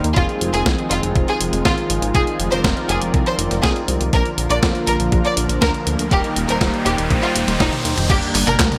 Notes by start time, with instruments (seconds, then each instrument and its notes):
Already playing: analog synth pad D#3 G3 A#3 G4
0.04 analog synth bass D#2, closed hi-hat
0.16 analog synth bass F1, analog polysynth F3 C4 D#4 G#4, analog synth pad G#3 C4 F4, violin section F4, kick, closed hi-hat
0.29 closed hi-hat
0.41 analog synth bass F1, closed hi-hat
0.53 analog synth bass F1, analog polysynth F3 C4 D#4 G#4, violin section G#4, closed hi-hat
0.66 analog synth bass C2, kick, snare, closed hi-hat
0.79 closed hi-hat
0.91 analog synth bass F1, violin section F4, closed hi-hat
1.03 analog synth bass F1, closed hi-hat
1.15 analog synth bass F1, kick, closed hi-hat
1.28 violin section G#4, closed hi-hat
1.40 analog synth bass F1, closed hi-hat
1.53 analog synth bass F1, closed hi-hat
1.65 analog synth bass G#1, violin section F4, kick, snare, closed hi-hat
1.78 closed hi-hat
1.90 analog synth bass G#1, closed hi-hat
2.02 analog synth bass G#1, closed hi-hat
2.15 analog synth bass F1, analog polysynth F3 C4 D#4 G#4, violin section G#4, analog synth pad D5, kick, closed hi-hat
2.27 closed hi-hat
2.39 analog synth bass F1, closed hi-hat
2.52 analog synth bass F1, analog polysynth F3 C4 D#4 A#4, violin section C5, closed hi-hat
2.64 analog synth bass F1, kick, snare, closed hi-hat
2.77 closed hi-hat
2.89 analog synth bass F1, violin section G#4, closed hi-hat
3.01 analog synth bass F1, closed hi-hat
3.14 analog synth bass C2, kick, closed hi-hat
3.26 violin section C5, closed hi-hat
3.39 analog synth bass F1, closed hi-hat
3.51 analog synth bass F1, snare, closed hi-hat
3.63 analog synth bass C2, violin section G#4, kick, snare, closed hi-hat
3.76 closed hi-hat
3.88 analog synth bass C2, closed hi-hat
4.01 analog synth bass C2, closed hi-hat
4.13 analog synth bass A#1, analog synth pad D3 F3 A#3 F4, analog polysynth F3 A#3 D4 A#4, violin section A#4, kick, closed hi-hat, riser
4.25 closed hi-hat
4.38 analog synth bass A#1, closed hi-hat
4.50 analog synth bass A#1, analog polysynth F3 A#3 D4 A#4, violin section D5, closed hi-hat
4.63 analog synth bass F2, kick, snare, closed hi-hat
4.75 closed hi-hat
4.87 analog synth bass A#1, violin section A#4, closed hi-hat
5.00 analog synth bass A#1, closed hi-hat
5.12 analog synth bass A#1, kick, closed hi-hat
5.24 violin section D5, closed hi-hat
5.37 analog synth bass A#1, closed hi-hat
5.49 analog synth bass A#1, closed hi-hat
5.62 analog synth bass D2, violin section A#4, kick, snare, closed hi-hat
5.74 closed hi-hat
5.87 analog synth bass D2, closed hi-hat
5.99 analog synth bass D2, closed hi-hat
6.11 analog synth bass D#1, analog synth pad D#3 G3 G4, analog polysynth G3 A#3 D#4 A#4, violin section G4, kick, closed hi-hat
6.24 closed hi-hat
6.36 analog synth bass D#1, closed hi-hat
6.48 analog synth bass D#1, analog polysynth G3 A#3 D#4 C5, violin section A#4, closed hi-hat
6.61 analog synth bass D#1, kick, snare, closed hi-hat
6.74 closed hi-hat
6.86 analog synth bass D#1, violin section G4, closed hi-hat
6.98 analog synth bass D#1, closed hi-hat
7.10 analog synth bass A#1, kick, closed hi-hat
7.23 violin section F4, closed hi-hat
7.35 analog synth bass D#1, closed hi-hat
7.48 analog synth bass D#1, snare, closed hi-hat
7.60 analog synth bass D#1, violin section D#4, kick, snare, closed hi-hat, high tom
7.73 closed hi-hat, high tom
7.85 analog synth bass D#2, closed hi-hat
7.97 analog synth bass D#1, closed hi-hat, mid tom
8.10 analog synth bass G1, analog synth pad D3 G3 A#3 G4, analog polysynth G3 A#3 D4 A#4, violin section G4, kick, closed hi-hat, crash, tambourine
8.22 closed hi-hat, tambourine
8.35 analog synth bass G1, clap, open hi-hat, tambourine
8.47 analog synth bass G1, analog polysynth G3 A#3 D4 A#4, violin section A#4, closed hi-hat, high tom, tambourine
8.59 analog synth bass D2, kick, snare, clap, closed hi-hat, tambourine
8.72 closed hi-hat, high tom, tambourine